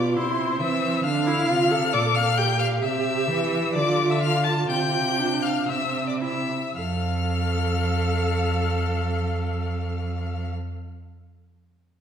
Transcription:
0.00 0.17 B2 medium
0.00 0.18 F4 medium
0.00 0.12 D5 loud
0.00 0.12 D6 loud
0.15 0.62 C3 medium
0.15 0.60 E4 medium
0.15 0.61 C5 medium
0.15 0.60 C6 loud
0.60 1.04 E3 medium
0.60 1.06 C4 medium
0.60 1.04 E5 loud
0.60 1.04 E6 loud
1.04 1.48 D3 medium
1.04 1.28 D4 medium
1.04 1.91 F5 loud
1.04 1.94 F6 loud
1.27 1.51 E4 medium
1.48 1.95 C3 medium
1.48 1.72 F4 medium
1.71 2.39 A4 medium
1.93 2.83 A#2 medium
1.93 2.01 D5 loud
1.93 2.16 D6 loud
2.15 2.38 F5 loud
2.15 2.39 F6 loud
2.37 3.76 G4 medium
2.37 2.61 G5 loud
2.37 2.58 G6 loud
2.59 2.81 F5 loud
2.59 2.67 F6 loud
2.81 3.30 C3 medium
2.81 3.72 E5 loud
2.81 3.72 E6 loud
3.28 3.76 E3 medium
3.73 4.68 D3 loud
3.73 4.22 F4 medium
3.73 4.08 D5 loud
3.73 4.12 D6 loud
4.09 4.23 E5 loud
4.09 4.20 E6 loud
4.21 5.20 F4 medium
4.21 4.46 F5 loud
4.21 4.43 F6 loud
4.44 4.68 A5 loud
4.44 4.52 A6 loud
4.68 5.66 C3 medium
4.68 5.42 G5 loud
4.68 5.43 G6 loud
5.19 5.70 D4 medium
5.42 5.71 F5 medium
5.42 5.67 F6 loud
5.68 6.50 C3 medium
5.68 6.23 C4 medium
5.68 6.09 E5 medium
5.68 6.07 E6 loud
6.07 6.20 D5 medium
6.07 6.14 D6 medium
6.21 6.52 E4 medium
6.21 6.75 E5 medium
6.21 6.75 E6 loud
6.76 10.50 F2 medium
6.76 10.50 A4 medium
6.76 10.51 F5 medium
6.76 10.50 F6 loud

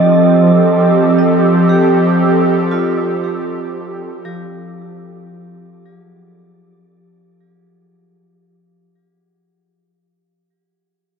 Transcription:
0.00 6.89 F3 medium
0.00 6.88 C4 medium
0.00 1.26 F4 medium
0.00 6.89 G4 medium
0.00 6.88 A4 medium
0.00 6.92 D5 medium
0.00 4.14 D#5 medium
0.00 6.91 D6 medium
1.69 2.93 G4 medium
2.71 4.47 F4 medium
4.25 8.83 F3 medium
4.25 8.83 G4 medium

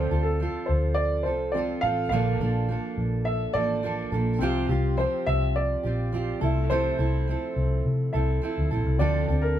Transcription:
0.00 0.11 D3 medium
0.00 0.11 F3 medium
0.00 0.12 C4 medium
0.00 1.50 C4 medium
0.00 0.12 F4 medium
0.00 1.51 F4 medium
0.00 0.25 C5 medium
0.00 1.52 D5 medium
0.11 0.46 D2 loud
0.11 0.40 C4 soft
0.11 0.41 F4 medium
0.11 0.40 A4 medium
0.23 0.69 A4 medium
0.40 1.54 F3 soft
0.40 1.26 C4 medium
0.40 1.27 F4 medium
0.40 1.25 A4 medium
0.66 1.26 D2 medium
0.66 0.97 C5 medium
0.94 1.25 D5 loud
1.23 1.73 C2 medium
1.23 1.54 A4 medium
1.23 1.54 C5 medium
1.28 1.54 C4 soft
1.28 1.55 F4 soft
1.52 1.83 F3 medium
1.52 2.11 C4 soft
1.52 1.84 C4 medium
1.52 2.12 F4 soft
1.52 1.58 D5 medium
1.52 2.12 D5 medium
1.57 1.83 F4 medium
1.57 1.81 A4 medium
1.81 2.07 A1 medium
1.81 2.13 F4 medium
1.81 2.11 A4 medium
1.81 2.08 F5 loud
1.86 2.12 C4 soft
2.09 2.35 A#1 loud
2.09 2.40 A#2 medium
2.09 2.40 D3 medium
2.09 2.41 F3 medium
2.09 4.36 A#3 medium
2.09 2.41 A#3 medium
2.09 2.40 D4 medium
2.09 4.37 A4 medium
2.09 2.92 F5 medium
2.14 2.39 A4 medium
2.14 4.38 D5 medium
2.40 2.75 A#1 loud
2.40 2.67 F3 soft
2.40 2.69 A#3 soft
2.40 2.70 D4 medium
2.40 2.69 A4 medium
2.69 3.58 F3 medium
2.69 3.56 A#3 medium
2.69 3.54 D4 medium
2.69 3.53 A4 medium
2.97 3.45 A#1 medium
3.25 3.52 E5 loud
3.54 4.02 A1 loud
3.54 3.83 A#3 soft
3.54 3.84 D4 soft
3.54 3.83 A4 medium
3.54 4.08 D5 loud
3.58 3.82 F3 soft
3.83 4.12 F3 medium
3.83 4.13 A#3 medium
3.83 4.12 D4 medium
3.83 4.11 A4 medium
4.12 4.41 A#1 loud
4.12 4.40 F3 soft
4.12 4.42 A#3 medium
4.12 4.42 D4 medium
4.12 4.41 A4 medium
4.39 4.64 C2 loud
4.39 4.70 C3 medium
4.39 4.70 F3 medium
4.39 6.37 C4 medium
4.39 4.70 C4 medium
4.39 4.70 F4 medium
4.39 6.38 G4 medium
4.39 6.39 F5 medium
4.43 4.68 G4 medium
4.69 5.05 C2 medium
4.69 4.98 C4 medium
4.69 4.99 F4 medium
4.69 4.98 G4 medium
4.97 5.86 F3 medium
4.97 5.86 C4 medium
4.97 5.85 F4 medium
4.97 5.82 G4 medium
4.97 5.25 C5 medium
5.26 5.74 C2 medium
5.26 5.53 E5 loud
5.56 6.38 D5 medium
5.83 6.32 A#1 medium
5.83 6.13 C4 soft
5.83 6.13 F4 medium
5.83 6.13 G4 medium
6.12 6.41 F3 medium
6.12 6.42 C4 medium
6.12 6.42 F4 medium
6.12 6.41 G4 medium
6.40 6.89 C2 loud
6.40 8.66 A3 medium
6.40 6.71 E4 medium
6.40 8.67 F4 medium
6.40 6.70 A4 medium
6.44 6.70 C4 medium
6.44 8.68 E5 medium
6.70 6.99 C3 medium
6.70 6.99 F3 medium
6.70 7.00 C4 medium
6.70 6.99 E4 medium
6.70 6.97 A4 medium
6.70 7.81 C5 medium
6.98 7.34 C2 medium
6.98 7.28 C4 soft
6.98 7.28 E4 medium
6.98 7.28 A4 medium
7.27 8.18 F3 soft
7.27 8.16 C4 medium
7.27 8.14 E4 medium
7.27 8.13 A4 medium
7.56 7.80 C2 medium
7.85 8.09 C3 medium
8.13 8.38 C2 medium
8.13 8.43 E4 medium
8.13 8.42 A4 medium
8.13 8.95 E5 medium
8.17 8.42 C4 soft
8.42 8.71 F3 medium
8.42 8.72 C4 medium
8.42 8.71 E4 medium
8.42 8.70 A4 medium
8.58 8.69 D2 medium
8.71 8.84 A#1 medium
8.71 9.00 C4 soft
8.71 9.01 E4 medium
8.71 9.00 A4 medium
8.87 9.01 C2 medium
8.98 9.24 D2 medium
8.98 9.28 D3 medium
8.98 9.29 F3 medium
8.98 9.60 C4 medium
8.98 9.29 C4 medium
8.98 9.29 D4 medium
8.98 9.60 F4 medium
8.98 9.27 A4 medium
8.98 9.44 D5 medium
8.98 9.60 D5 medium
9.28 9.60 D2 loud
9.28 9.57 C4 soft
9.28 9.58 D4 medium
9.28 9.57 A4 medium
9.42 9.60 A#4 medium

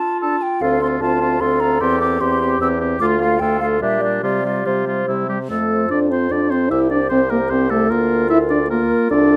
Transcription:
0.00 0.63 F4 soft
0.00 0.21 A5 soft
0.21 0.37 D4 soft
0.21 0.36 A4 soft
0.21 0.44 A5 medium
0.42 0.63 G5 medium
0.61 0.96 D2 soft
0.61 0.81 C4 soft
0.61 0.81 F4 soft
0.61 1.03 A4 soft
0.61 0.81 F5 soft
0.81 1.01 C4 soft
0.81 1.02 F4 soft
0.81 0.88 C6 medium
1.01 1.36 D2 soft
1.01 1.20 C4 soft
1.01 1.42 F4 soft
1.01 1.21 F4 soft
1.01 1.42 A5 medium
1.21 1.40 C4 soft
1.21 1.41 F4 soft
1.40 1.76 D2 soft
1.40 1.60 C4 soft
1.40 1.61 F4 soft
1.40 2.22 A4 soft
1.40 1.62 C6 medium
1.60 1.80 C4 soft
1.60 1.80 F4 soft
1.60 1.82 A#5 medium
1.80 2.16 E2 soft
1.80 2.00 C4 soft
1.80 2.00 G4 soft
1.80 1.99 C6 medium
2.00 2.20 C4 soft
2.00 2.20 G4 soft
2.00 2.22 D6 medium
2.20 2.56 E2 soft
2.20 2.40 C4 soft
2.20 2.73 G4 soft
2.20 2.40 G4 soft
2.20 2.61 C6 medium
2.41 2.60 C4 soft
2.41 2.60 G4 soft
2.60 2.96 E2 soft
2.60 2.80 C4 soft
2.60 2.80 G4 soft
2.60 2.67 E6 medium
2.80 2.99 C4 soft
2.80 3.00 G4 soft
3.00 3.36 D2 medium
3.00 3.19 A3 soft
3.00 3.38 F4 soft
3.00 3.21 F4 soft
3.00 3.06 D6 medium
3.19 3.40 A3 soft
3.19 3.41 F4 soft
3.19 3.41 F5 medium
3.39 3.77 D2 soft
3.39 3.60 A3 soft
3.39 3.61 F4 soft
3.39 3.80 A4 soft
3.39 3.60 G5 soft
3.60 3.80 A3 soft
3.60 3.81 F4 soft
3.60 3.66 F5 medium
3.81 4.19 A#2 soft
3.81 4.01 G3 soft
3.81 4.02 D4 soft
3.81 4.23 G4 soft
3.81 4.03 E5 soft
4.01 4.22 G3 soft
4.01 4.23 D4 soft
4.01 4.23 D5 soft
4.23 4.61 C3 soft
4.23 4.44 G3 soft
4.23 4.44 F4 soft
4.23 5.27 G4 soft
4.23 4.68 D5 soft
4.44 4.65 G3 soft
4.44 4.65 F4 soft
4.66 5.04 C3 soft
4.66 4.86 G3 soft
4.66 4.87 F4 soft
4.66 5.30 C5 soft
4.87 5.07 G3 soft
4.87 5.07 F4 soft
5.08 5.46 C3 soft
5.08 5.28 G3 soft
5.08 5.29 E4 soft
5.29 5.38 G3 soft
5.29 5.39 G4 soft
5.49 5.86 F2 soft
5.49 5.90 A3 soft
5.49 5.90 A4 soft
5.71 6.10 F4 soft
5.71 6.10 C5 soft
5.90 6.27 F2 soft
5.90 6.12 D4 soft
5.90 6.00 D5 soft
6.11 6.30 C4 soft
6.11 6.50 F4 soft
6.11 6.50 C5 soft
6.11 6.33 C5 soft
6.31 6.66 F2 soft
6.31 6.53 D4 soft
6.31 6.52 D5 soft
6.50 6.72 C4 soft
6.50 6.70 F4 soft
6.50 6.70 C5 soft
6.70 7.06 C2 soft
6.70 6.91 E4 medium
6.70 6.90 G4 soft
6.70 6.91 C5 soft
6.70 6.80 E5 soft
6.90 7.00 D4 soft
6.90 7.30 G4 soft
6.90 7.30 C5 soft
6.90 7.09 D5 soft
7.09 7.46 C2 soft
7.09 7.20 C4 medium
7.09 7.31 C5 soft
7.30 7.40 A#3 soft
7.30 7.69 G4 soft
7.30 7.51 A#4 soft
7.30 7.70 C5 soft
7.50 7.86 C2 soft
7.50 7.70 C4 medium
7.50 7.71 C5 soft
7.70 7.92 A3 medium
7.70 7.89 G4 soft
7.70 7.91 A4 soft
7.70 7.90 C5 soft
7.89 8.94 D2 soft
7.89 8.29 A#3 medium
7.89 8.66 F4 soft
7.89 8.29 A#4 soft
7.89 8.66 A#4 soft
8.30 8.39 E4 medium
8.30 8.39 E5 medium
8.50 8.60 D4 medium
8.50 8.70 D5 soft
8.70 9.11 A#3 medium
8.70 9.11 F4 soft
8.70 9.12 A#4 soft
8.70 9.10 A#4 soft
9.10 9.37 C2 soft
9.10 9.37 D4 medium
9.10 9.37 F4 soft
9.10 9.37 A4 soft
9.10 9.37 D5 medium

